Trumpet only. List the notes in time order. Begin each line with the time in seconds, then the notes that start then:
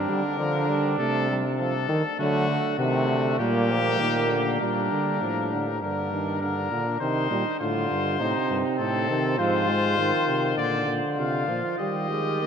Already playing: A#4
0.98 A4
1.58 A4
2.19 F#4
2.79 F#4
3.40 G4
4.60 A#4
5.81 A#4
6.41 A#4
7.00 C5
7.60 C5
8.78 A4
9.38 C5
10.57 D5
11.17 F5
11.79 D#5